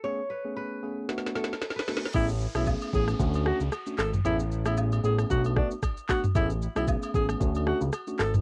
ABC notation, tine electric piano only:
X:1
M:4/4
L:1/16
Q:"Swing 16ths" 1/4=114
K:A
V:1 name="Tine electric piano"
[A,B,CG] z2 [A,B,CG]3 [A,B,CG]2 [A,B,DF]2 [A,B,DF] z3 [A,B,DF] z | [A,B,CG] z2 [A,B,CG]3 [A,B,CG]2 [A,CDF]2 [A,CDF] z2 [A,CDF] z2 | [A,B,CG] z2 [A,B,CG]3 [A,B,CG]2 [A,B,DF]2 [A,B,DF] z3 [A,B,DF] z | [A,B,CG] z2 [A,B,CG]3 [A,B,CG]2 [A,CDF]2 [A,CDF] z2 [A,CDF] z2 |]